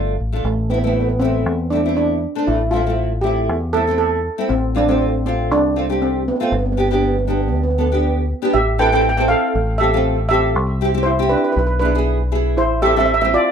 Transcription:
Already playing: fingered electric bass G1, nylon-string guitar A3 D4 F4
0.20 fingered electric bass A1
0.33 nylon-string guitar A3 D4 F4
0.44 fingered electric bass A1, steel pan A3
0.70 nylon-string guitar A3 C4 E4, steel pan B3
0.79 steel pan B3
0.84 nylon-string guitar A3 C4 E4, steel pan B3
0.93 steel pan B3
1.00 steel pan B3
1.09 steel pan B3
1.20 nylon-string guitar A3 C4 E4, steel pan C4
1.46 fingered electric bass E2
1.70 nylon-string guitar A3 C4 E4, steel pan D4
1.85 nylon-string guitar A3 C4 E4
1.97 steel pan D4
2.35 nylon-string guitar A3 C4 D4
2.47 fingered electric bass A1, steel pan E4
2.71 nylon-string guitar A3 C4 E4, steel pan F4
2.86 nylon-string guitar A3 C4 E4
3.21 nylon-string guitar A3 C4 E4, steel pan G4
3.49 fingered electric bass E2
3.73 nylon-string guitar A3 C4 E4, steel pan A4
3.87 nylon-string guitar A3 C4 E4
3.98 steel pan A4
4.38 nylon-string guitar A3 C4 E4
4.49 fingered electric bass A1, steel pan C4
4.75 nylon-string guitar A3 C4 F4, steel pan D4
4.88 nylon-string guitar A3 C4 F4, steel pan C4
5.26 nylon-string guitar A3 C4 F4, steel pan C4
5.51 fingered electric bass C2, steel pan D4
5.76 nylon-string guitar A3 C4 F4
5.89 nylon-string guitar A3 C4 G4
6.02 steel pan C4
6.28 steel pan B3
6.36 steel pan B3
6.40 nylon-string guitar A3 C4 F4
6.44 steel pan B3
6.50 fingered electric bass G1, steel pan B3
6.59 steel pan B3
6.66 steel pan B3
6.72 steel pan B3
6.77 nylon-string guitar B3 D4 G4, steel pan B3
6.89 steel pan B3, nylon-string guitar B3 D4 G4
6.95 steel pan B3
7.03 steel pan B3
7.11 steel pan B3
7.19 steel pan B3
7.25 steel pan B3, nylon-string guitar B3 D4 G4
7.32 steel pan B3
7.42 steel pan B3
7.48 steel pan B3
7.54 fingered electric bass D2, steel pan B3
7.63 steel pan B3
7.70 steel pan B3
7.78 nylon-string guitar B3 D4 A4, steel pan B3
7.86 steel pan B3
7.92 nylon-string guitar B3 D4 G4
8.42 nylon-string guitar B3 D4 G4
8.54 fingered electric bass A1, steel pan G4 E5
8.78 nylon-string guitar C4 E4 A4, steel pan B4 G5
8.86 steel pan G5
8.92 nylon-string guitar C4 E4 A4, steel pan G5
9.01 steel pan G5
9.09 steel pan G5
9.17 nylon-string guitar C4 E4 A4, steel pan G5
9.28 steel pan A4 F5
9.55 fingered electric bass A1
9.78 nylon-string guitar C4 F4 A4, steel pan G4 E5
9.93 nylon-string guitar C4 F4 A4
10.29 nylon-string guitar C4 F4 A4, steel pan G4 E5
10.56 fingered electric bass C2
10.81 nylon-string guitar C4 E4 G4
10.94 nylon-string guitar C4 E4 G4
11.03 steel pan E4 C5
11.19 nylon-string guitar C4 E4 G4
11.29 steel pan D4 B4
11.37 steel pan B4
11.44 steel pan B4
11.52 steel pan B4
11.57 fingered electric bass B1, steel pan B4
11.67 steel pan B4
11.79 nylon-string guitar B3 E4 G#4, steel pan D4 B4
11.95 nylon-string guitar B3 E4 G#4
12.32 nylon-string guitar B3 E4 G#4
12.57 fingered electric bass A1, steel pan E4 C5
12.82 nylon-string guitar C4 E4 A4, steel pan G4 E5
12.91 steel pan E5
12.96 nylon-string guitar C4 E4 A4, steel pan E5
13.06 steel pan E5
13.14 steel pan E5
13.21 nylon-string guitar C4 E4 C5, steel pan E5
13.34 steel pan F4 D5

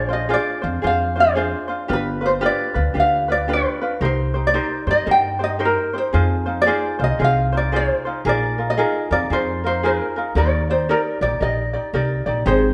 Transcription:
Already playing: upright bass A#1, ukulele G#4 D5
0.09 ukulele D4 F4 C5
0.13 ukulele D#5
0.29 ukulele D4 F4 G#4 C5
0.34 ukulele D5
0.62 upright bass F2, ukulele D4 F4 C5
0.82 upright bass F2, ukulele D4 F4 G#4 C5
0.87 ukulele F5
1.16 ukulele D4 F4 C5
1.20 ukulele C5
1.35 ukulele D4 F4 G#4 C5
1.68 ukulele D4 F4 C5
1.88 upright bass G1, ukulele D4 F4 G4 B4
1.93 ukulele B4
2.21 ukulele D4 F4 B4
2.26 ukulele C5
2.41 ukulele D4 F4 G4 B4
2.46 ukulele D5
2.74 upright bass D2, ukulele D4 F4 B4
2.94 upright bass D2, ukulele D4 F4 G4 B4
3.00 ukulele F5
3.28 ukulele D4 F4 B4 D5
3.48 ukulele D4 F4 G4 B4
3.53 ukulele B4
3.81 ukulele D4 F4 B4
4.01 upright bass C2, ukulele D#4 G4 A#4 C5
4.05 ukulele C5
4.34 ukulele D#4 G4 C5
4.47 ukulele D5
4.54 ukulele D#4 G4 A#4 C5
4.87 upright bass G2, ukulele D#4 G4 C5 D#5
5.06 upright bass G2, ukulele D#4 G4 A#4 C5
5.11 ukulele G5
5.39 ukulele D#4 G4 C5
5.44 ukulele D#5
5.59 ukulele D#4 G4 A#4 C5
5.65 ukulele A#4
5.93 ukulele D#4 G4 C5
5.98 ukulele C5
6.13 upright bass F2, ukulele D#4 F4 G#4 C5
6.46 ukulele D#4 F4 C5
6.62 ukulele D5
6.66 ukulele D#4 F4 G#4 C5
6.99 upright bass C2, ukulele D#4 F4 C5
7.04 ukulele D#5
7.19 upright bass C2, ukulele D#4 F4 G#4 C5
7.24 ukulele F5
7.53 ukulele D#4 F4 C5
7.57 ukulele D5
7.72 ukulele D#4 F4 G#4 C5
7.76 ukulele C5
8.05 ukulele D#4 F4 C5
8.25 upright bass A#1, ukulele D#4 F4 G#4 A#4
8.29 ukulele D5
8.58 ukulele D#4 F4 A#4
8.70 ukulele D#5
8.77 ukulele D#4 F4 G#4 A#4
9.11 upright bass F2, ukulele D#4 F4 A#4 D5
9.30 upright bass F2, ukulele D#4 F4 G#4 A#4 C5
9.64 ukulele D#4 F4 A#4 C5
9.83 ukulele D#4 F4 G#4 A#4
10.16 ukulele D#4 F4 A#4
10.35 upright bass D#2, ukulele D#4 G4 A#4 D5
10.70 ukulele D#4 G4 C5 D5
10.89 ukulele D#4 G4 A#4 D5
11.21 upright bass A#1, ukulele D#4 G4 D5
11.40 upright bass A#1, ukulele D#4 G4 A#4 D5 D#5
11.73 ukulele D#4 G4 D5
11.93 upright bass C2, ukulele D#4 G4 A#4 D5
12.26 upright bass A#1, ukulele D#4 G4 D5
12.46 upright bass G#1, ukulele D#4 G4 G#4 C5, vibraphone G#4

